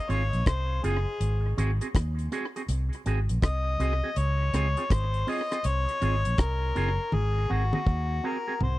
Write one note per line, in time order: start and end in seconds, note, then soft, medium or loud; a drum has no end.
0.00 0.11 D#5 loud
0.09 0.30 G#1 medium
0.09 0.22 C4 medium
0.09 0.22 F4 medium
0.09 0.22 G#4 medium
0.09 0.47 C#5 medium
0.09 closed hi-hat medium
0.33 0.45 A#1 medium
0.33 closed hi-hat medium
0.46 0.79 C2 medium
0.46 0.85 C5 loud
0.46 kick loud
0.46 cross-stick loud
0.46 closed hi-hat medium
0.83 1.04 F#1 medium
0.83 0.96 C4 medium
0.83 0.96 F4 medium
0.83 1.58 G#4 medium
0.83 0.97 G#4 loud
0.83 closed hi-hat medium
1.20 1.53 G#1 loud
1.20 closed hi-hat loud
1.57 1.78 G#1 loud
1.57 1.70 C4 medium
1.57 1.70 F#4 medium
1.57 1.71 G#4 medium
1.57 closed hi-hat medium
1.81 1.87 C4 medium
1.81 1.87 F#4 medium
1.81 1.87 G#4 medium
1.81 closed hi-hat medium
1.95 2.27 D#2 medium
1.95 kick loud
1.95 cross-stick loud
1.95 closed hi-hat loud
2.19 closed hi-hat medium
2.32 2.44 C4 medium
2.32 2.44 F#4 medium
2.32 2.45 G#4 loud
2.32 closed hi-hat medium
2.56 2.62 C4 medium
2.56 2.61 F#4 medium
2.56 2.61 G#4 medium
2.56 closed hi-hat medium
2.69 2.89 C2 loud
2.69 closed hi-hat loud
2.93 closed hi-hat medium
3.06 3.27 G#1 loud
3.06 3.18 C4 medium
3.06 3.19 F#4 medium
3.06 3.19 G#4 loud
3.06 closed hi-hat medium
3.29 3.41 A#1 medium
3.29 closed hi-hat medium
3.42 3.75 C2 loud
3.42 4.20 D#5 loud
3.42 kick loud
3.42 cross-stick loud
3.42 closed hi-hat medium
3.80 4.00 C2 medium
3.80 3.92 C4 medium
3.80 3.92 F#4 medium
3.80 3.93 G#4 loud
3.80 closed hi-hat medium
4.03 4.09 C4 medium
4.03 4.09 F#4 medium
4.03 4.09 G#4 medium
4.16 4.49 C#2 loud
4.16 4.94 C#5 loud
4.16 closed hi-hat medium
4.53 4.74 C#2 medium
4.53 4.66 C4 medium
4.53 4.67 F4 medium
4.53 4.67 G#4 medium
4.53 cross-stick medium
4.53 closed hi-hat medium
4.77 4.83 C4 medium
4.77 4.83 F4 medium
4.77 4.83 G#4 medium
4.77 closed hi-hat medium
4.90 5.23 G#1 medium
4.90 5.31 C5 medium
4.90 kick loud
4.90 cross-stick loud
4.90 closed hi-hat loud
5.14 closed hi-hat medium
5.27 5.40 C4 medium
5.27 5.40 F4 medium
5.27 5.40 G#4 medium
5.27 5.68 D#5 loud
5.27 open hi-hat medium
5.51 5.57 C4 medium
5.51 5.57 F4 medium
5.51 5.57 G#4 medium
5.51 cross-stick medium
5.51 closed hi-hat medium
5.64 5.85 C2 loud
5.64 6.41 C#5 loud
5.64 closed hi-hat loud
5.89 closed hi-hat medium
6.01 6.23 G#1 medium
6.01 6.14 C4 medium
6.01 6.14 F4 medium
6.01 6.15 G#4 medium
6.01 closed hi-hat medium
6.25 6.37 A#1 medium
6.25 closed hi-hat medium
6.38 6.71 C2 medium
6.38 7.16 A#4 medium
6.38 kick loud
6.38 cross-stick loud
6.38 closed hi-hat medium
6.75 6.97 F#1 medium
6.75 6.88 C4 medium
6.75 6.88 F4 loud
6.75 6.89 G#4 loud
6.75 closed hi-hat medium
7.12 7.45 G#1 loud
7.12 7.54 G#4 loud
7.12 high tom medium
7.50 7.71 G#1 medium
7.50 7.62 C4 medium
7.50 7.62 F#4 medium
7.50 8.28 F#4 loud
7.50 7.63 G#4 medium
7.73 7.79 C4 medium
7.73 7.79 F#4 medium
7.73 7.79 G#4 medium
7.73 high tom medium
7.87 8.19 D#2 medium
7.87 kick loud
8.24 8.36 C4 medium
8.24 8.37 F#4 medium
8.24 8.37 G#4 medium
8.24 8.62 A#4 medium
8.48 8.54 C4 medium
8.48 8.53 F#4 medium
8.48 8.53 G#4 medium
8.61 8.79 C2 loud
8.61 8.79 C5 medium
8.61 mid tom medium